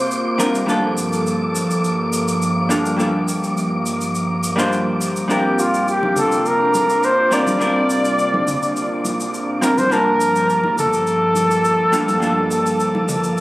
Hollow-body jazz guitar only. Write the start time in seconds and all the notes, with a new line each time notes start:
Already playing: G3 C4 D4 A#4
0.38 G3 C4 D4 F4 A#4
0.66 G3 A#3 D4 F4 A4
2.69 G3 A#3 D4 F4 A4
2.97 G3 A#3 D4 F4 A4
4.56 G3 A#3 D4 F4 C5
5.28 G3 C4 D4 F4 A#4
7.31 G3 C4 D4 F4 A#4
7.58 G3 C4 D4 F4 A#4
9.61 G3 C4 D4 F4 A#4
9.89 G3 A#3 D4 F4 A5
11.92 G3 A#3 D4 F4 A4
12.20 G3 A#3 D4 F4 A4